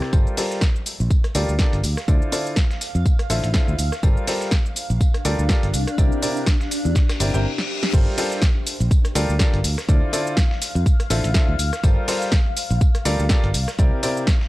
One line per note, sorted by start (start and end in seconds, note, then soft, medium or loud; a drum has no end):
0.00 0.10 C3 medium
0.00 0.10 E4 medium
0.00 0.10 G4 medium
0.00 0.10 A#4 medium
0.00 0.10 C5 medium
0.00 0.10 D5 loud
0.00 cross-stick medium
0.00 snare soft
0.13 0.24 G1 loud
0.13 0.35 G3 medium
0.13 0.35 F4 medium
0.13 0.35 G4 medium
0.13 0.35 A4 medium
0.13 0.35 A#4 medium
0.13 0.35 C5 medium
0.13 kick loud
0.13 tambourine medium
0.13 cabasa soft
0.27 cabasa soft
0.37 0.61 G3 medium
0.37 0.61 F4 medium
0.37 0.61 G4 medium
0.37 0.61 A4 medium
0.37 0.61 A#4 medium
0.37 0.61 C5 medium
0.37 snare soft
0.37 open hi-hat medium
0.37 open hi-hat loud
0.37 cabasa medium
0.51 snare soft
0.51 cabasa soft
0.61 kick loud
0.61 cross-stick medium
0.61 snare loud
0.61 tambourine medium
0.61 cabasa soft
0.71 5.74 F5 medium
0.76 cabasa soft
0.86 open hi-hat medium
0.86 tambourine medium
0.86 cabasa medium
1.00 1.08 A#1 medium
1.00 cabasa soft
1.10 kick loud
1.10 tambourine medium
1.10 cabasa soft
1.24 cross-stick medium
1.24 closed hi-hat soft
1.24 cabasa soft
1.35 1.46 D2 medium
1.35 1.51 G3 medium
1.35 1.51 F4 medium
1.35 1.51 G4 medium
1.35 1.51 A4 medium
1.35 1.51 A#4 medium
1.35 1.51 D5 medium
1.35 open hi-hat loud
1.35 tambourine medium
1.35 cabasa medium
1.49 1.57 D2 medium
1.49 cabasa soft
1.59 1.75 D3 medium
1.59 1.75 F4 medium
1.59 1.75 G4 medium
1.59 1.75 A4 medium
1.59 1.75 A#4 medium
1.59 1.75 D5 loud
1.59 kick loud
1.59 snare loud
1.59 tambourine medium
1.59 cabasa soft
1.73 1.81 G1 medium
1.73 closed hi-hat soft
1.73 cabasa soft
1.84 1.94 D2 medium
1.84 open hi-hat medium
1.84 tambourine medium
1.84 cabasa medium
1.97 cross-stick medium
1.97 snare medium
1.97 cabasa soft
2.08 2.19 D2 loud
2.08 2.30 D3 medium
2.08 2.30 E4 medium
2.08 2.30 F4 medium
2.08 2.30 A4 medium
2.08 2.30 C5 medium
2.08 2.30 D5 medium
2.08 kick loud
2.08 tambourine medium
2.08 cabasa soft
2.22 cabasa soft
2.32 2.56 D3 medium
2.32 2.56 E4 medium
2.32 2.56 F4 medium
2.32 2.56 A4 medium
2.32 2.56 C5 medium
2.32 2.56 D5 medium
2.32 open hi-hat loud
2.32 tambourine medium
2.32 cabasa medium
2.46 cabasa soft
2.56 kick loud
2.56 cross-stick medium
2.56 snare loud
2.56 tambourine medium
2.56 cabasa soft
2.71 snare medium
2.71 cabasa soft
2.81 snare soft
2.81 open hi-hat medium
2.81 tambourine medium
2.81 cabasa medium
2.95 3.03 F2 medium
2.95 cabasa soft
3.06 kick loud
3.06 tambourine medium
3.06 cabasa soft
3.19 cross-stick medium
3.19 closed hi-hat soft
3.19 cabasa soft
3.30 3.41 A1 loud
3.30 3.46 D3 medium
3.30 3.46 E4 medium
3.30 3.46 F4 medium
3.30 3.46 A4 medium
3.30 3.46 C5 medium
3.30 3.46 E5 medium
3.30 snare soft
3.30 open hi-hat loud
3.30 tambourine medium
3.30 cabasa medium
3.44 3.52 A1 medium
3.44 closed hi-hat soft
3.44 cabasa soft
3.54 3.70 D3 medium
3.54 3.70 E4 medium
3.54 3.70 F4 medium
3.54 3.70 A4 medium
3.54 3.70 C5 medium
3.54 3.70 E5 loud
3.54 kick loud
3.54 snare loud
3.54 tambourine medium
3.54 cabasa soft
3.68 3.76 D2 loud
3.68 cabasa soft
3.79 3.89 D2 medium
3.79 open hi-hat medium
3.79 tambourine medium
3.79 cabasa medium
3.92 cross-stick medium
3.92 snare soft
3.92 cabasa soft
4.03 4.14 G1 loud
4.03 4.25 G3 medium
4.03 7.45 D4 medium
4.03 4.25 F4 medium
4.03 4.25 G4 medium
4.03 4.25 A4 medium
4.03 4.25 A#4 medium
4.03 4.25 C5 medium
4.03 kick loud
4.03 tambourine medium
4.03 cabasa soft
4.17 cabasa soft
4.27 4.51 G3 medium
4.27 4.51 F4 medium
4.27 4.51 G4 medium
4.27 4.51 A4 medium
4.27 4.51 A#4 medium
4.27 4.51 C5 medium
4.27 snare soft
4.27 open hi-hat medium
4.27 cabasa medium
4.41 snare soft
4.41 cabasa soft
4.51 kick loud
4.51 cross-stick medium
4.51 snare loud
4.51 tambourine medium
4.51 cabasa soft
4.66 cabasa soft
4.76 open hi-hat medium
4.76 tambourine medium
4.76 cabasa medium
4.90 4.98 A#1 medium
4.90 cabasa soft
5.01 kick loud
5.01 tambourine medium
5.01 cabasa soft
5.14 cross-stick medium
5.14 closed hi-hat soft
5.14 cabasa soft
5.25 5.36 D2 loud
5.25 5.41 G3 medium
5.25 5.41 F4 medium
5.25 5.41 G4 medium
5.25 5.41 A4 medium
5.25 5.41 A#4 medium
5.25 5.41 D5 loud
5.25 open hi-hat loud
5.25 tambourine medium
5.25 cabasa medium
5.39 5.47 D2 medium
5.39 cabasa soft
5.49 5.65 F4 medium
5.49 5.65 G4 medium
5.49 5.65 A4 medium
5.49 5.65 A#4 medium
5.49 5.65 D5 loud
5.49 kick loud
5.49 snare loud
5.49 tambourine medium
5.49 cabasa soft
5.63 5.72 G1 loud
5.63 closed hi-hat soft
5.63 cabasa soft
5.74 5.85 C2 medium
5.74 open hi-hat medium
5.74 tambourine medium
5.74 cabasa medium
5.87 cross-stick medium
5.87 closed hi-hat soft
5.87 cabasa soft
5.94 6.09 C2 loud
5.94 6.20 C3 medium
5.94 6.20 E4 medium
5.94 7.45 G4 medium
5.94 6.20 G4 medium
5.94 6.20 A#4 medium
5.94 6.20 C5 medium
5.94 6.20 D5 medium
5.94 kick loud
5.94 tambourine medium
5.99 cabasa soft
6.12 cabasa soft
6.22 6.46 C3 medium
6.22 6.46 E4 medium
6.22 6.46 G4 medium
6.22 6.46 A#4 medium
6.22 6.46 C5 medium
6.22 6.46 D5 medium
6.22 open hi-hat loud
6.22 tambourine medium
6.22 cabasa medium
6.37 cabasa soft
6.46 kick loud
6.46 cross-stick medium
6.46 snare loud
6.46 tambourine medium
6.46 cabasa soft
6.61 snare medium
6.61 cabasa soft
6.71 snare soft
6.71 open hi-hat medium
6.71 tambourine medium
6.71 cabasa medium
6.85 6.93 E2 medium
6.85 cabasa soft
6.95 kick loud
6.95 snare medium
6.95 snare loud
6.95 tambourine medium
6.95 reverse cymbal medium
6.95 cabasa soft
7.09 cross-stick medium
7.09 snare loud
7.09 tambourine medium
7.09 cabasa soft
7.20 7.31 G1 medium
7.20 7.31 C3 medium
7.20 7.31 E4 medium
7.20 7.31 G4 medium
7.20 7.31 A#4 medium
7.20 7.31 C5 medium
7.20 7.31 D5 medium
7.20 open hi-hat loud
7.20 tambourine medium
7.20 cabasa medium
7.34 7.45 G1 medium
7.34 7.43 C3 medium
7.34 7.43 E4 medium
7.34 7.43 G4 medium
7.34 7.43 A#4 medium
7.34 7.43 C5 medium
7.34 7.43 G5 medium
7.34 cabasa soft
7.58 snare medium
7.83 snare loud
7.93 8.04 G1 loud
7.93 8.15 G3 medium
7.93 8.15 F4 medium
7.93 8.15 G4 medium
7.93 8.15 A4 medium
7.93 8.15 A#4 medium
7.93 8.15 C5 medium
7.93 kick loud
7.93 tambourine medium
7.93 crash loud
7.93 cabasa soft
8.18 8.42 G3 medium
8.18 8.42 F4 medium
8.18 8.42 G4 medium
8.18 8.42 A4 medium
8.18 8.42 A#4 medium
8.18 8.42 C5 medium
8.18 snare soft
8.18 open hi-hat loud
8.18 open hi-hat medium
8.18 cabasa medium
8.32 snare soft
8.32 cabasa soft
8.42 kick loud
8.42 cross-stick medium
8.42 snare loud
8.42 tambourine medium
8.42 cabasa soft
8.57 13.54 F5 medium
8.67 open hi-hat medium
8.67 tambourine medium
8.67 cabasa medium
8.80 8.89 A#1 loud
8.80 cabasa soft
8.91 kick loud
8.91 tambourine medium
8.91 cabasa soft
9.05 cross-stick medium
9.05 closed hi-hat soft
9.05 cabasa soft
9.15 9.26 D2 loud
9.15 9.31 G3 medium
9.15 9.31 F4 medium
9.15 9.31 G4 medium
9.15 9.31 A4 medium
9.15 9.31 A#4 medium
9.15 9.31 D5 loud
9.15 open hi-hat loud
9.15 tambourine medium
9.15 cabasa medium
9.29 9.37 D2 medium
9.29 cabasa soft
9.39 9.56 D3 medium
9.39 9.56 F4 medium
9.39 9.56 G4 medium
9.39 9.56 A4 medium
9.39 9.56 A#4 medium
9.39 9.56 D5 loud
9.39 kick loud
9.39 snare loud
9.39 tambourine medium
9.39 cabasa soft
9.53 9.62 G1 loud
9.53 closed hi-hat soft
9.64 9.75 D2 medium
9.64 open hi-hat loud
9.64 tambourine medium
9.64 cabasa medium
9.78 cross-stick medium
9.78 snare medium
9.78 cabasa soft
9.88 9.99 D2 loud
9.88 10.10 D3 medium
9.88 10.10 E4 medium
9.88 10.10 F4 medium
9.88 10.10 A4 medium
9.88 10.10 C5 medium
9.88 10.10 D5 medium
9.88 kick loud
9.88 tambourine medium
9.88 cabasa soft
10.13 10.37 D3 medium
10.13 10.37 E4 medium
10.13 10.37 F4 medium
10.13 10.37 A4 medium
10.13 10.37 C5 medium
10.13 10.37 D5 medium
10.13 open hi-hat loud
10.13 tambourine medium
10.13 cabasa medium
10.27 cabasa soft
10.37 kick loud
10.37 cross-stick medium
10.37 snare loud
10.37 tambourine medium
10.37 cabasa soft
10.51 snare medium
10.62 snare soft
10.62 open hi-hat loud
10.62 tambourine medium
10.62 cabasa medium
10.75 10.84 F2 loud
10.75 cabasa soft
10.86 kick loud
10.86 tambourine medium
10.86 cabasa soft
11.00 cross-stick medium
11.00 closed hi-hat soft
11.00 cabasa soft
11.10 11.21 A1 loud
11.10 11.26 D3 medium
11.10 11.26 E4 medium
11.10 11.26 F4 medium
11.10 11.26 A4 medium
11.10 11.26 C5 medium
11.10 11.26 E5 loud
11.10 snare soft
11.10 open hi-hat loud
11.10 tambourine medium
11.10 cabasa medium
11.24 11.32 A1 medium
11.24 closed hi-hat soft
11.24 cabasa soft
11.34 11.51 D3 loud
11.34 11.51 E4 medium
11.34 11.51 F4 medium
11.34 11.51 A4 medium
11.34 11.51 C5 medium
11.34 11.51 E5 loud
11.34 kick loud
11.34 snare loud
11.34 tambourine medium
11.34 cabasa soft
11.48 11.57 D2 loud
11.59 11.70 D2 medium
11.59 open hi-hat loud
11.59 tambourine medium
11.59 cabasa medium
11.73 cross-stick medium
11.73 snare soft
11.73 cabasa soft
11.83 11.94 G1 loud
11.83 12.05 G3 medium
11.83 12.05 F4 medium
11.83 12.05 G4 medium
11.83 12.05 A4 medium
11.83 12.05 A#4 medium
11.83 12.05 C5 medium
11.83 kick loud
11.83 tambourine medium
11.83 cabasa soft
12.08 12.32 G3 medium
12.08 12.32 F4 medium
12.08 12.32 G4 medium
12.08 12.32 A4 medium
12.08 12.32 A#4 medium
12.08 12.32 C5 medium
12.08 snare soft
12.08 open hi-hat loud
12.08 open hi-hat medium
12.08 cabasa medium
12.22 snare soft
12.22 cabasa soft
12.32 kick loud
12.32 cross-stick medium
12.32 snare loud
12.32 tambourine medium
12.32 cabasa soft
12.57 open hi-hat loud
12.57 tambourine medium
12.57 cabasa medium
12.71 12.79 A#1 loud
12.71 cabasa soft
12.81 kick loud
12.81 tambourine medium
12.81 cabasa soft
12.95 cross-stick medium
12.95 closed hi-hat soft
12.95 cabasa soft
13.05 13.16 D2 loud
13.05 13.22 G3 medium
13.05 13.22 F4 medium
13.05 13.22 G4 medium
13.05 13.22 A4 medium
13.05 13.22 A#4 medium
13.05 13.22 D5 loud
13.05 open hi-hat loud
13.05 tambourine medium
13.05 cabasa medium
13.19 13.28 D2 medium
13.19 cabasa soft
13.29 13.46 F4 medium
13.29 13.46 G4 medium
13.29 13.46 A4 medium
13.29 13.46 A#4 medium
13.29 13.46 D5 loud
13.29 kick loud
13.29 snare loud
13.29 tambourine medium
13.29 cabasa soft
13.44 13.52 G1 loud
13.44 closed hi-hat soft
13.54 13.65 C2 medium
13.54 open hi-hat loud
13.54 tambourine medium
13.54 cabasa medium
13.68 cross-stick medium
13.68 snare medium
13.68 cabasa soft
13.79 13.89 C2 loud
13.79 14.01 C3 medium
13.79 14.01 E4 medium
13.79 14.01 G4 medium
13.79 14.01 A#4 medium
13.79 14.01 C5 medium
13.79 14.01 D5 medium
13.79 kick loud
13.79 tambourine medium
13.79 cabasa soft
14.03 14.27 C3 medium
14.03 14.27 E4 medium
14.03 14.27 G4 medium
14.03 14.27 A#4 medium
14.03 14.27 C5 medium
14.03 14.27 D5 medium
14.03 open hi-hat loud
14.03 tambourine medium
14.03 cabasa medium
14.17 cabasa soft
14.27 kick loud
14.27 cross-stick medium
14.27 snare loud
14.27 tambourine medium
14.27 cabasa soft
14.41 snare medium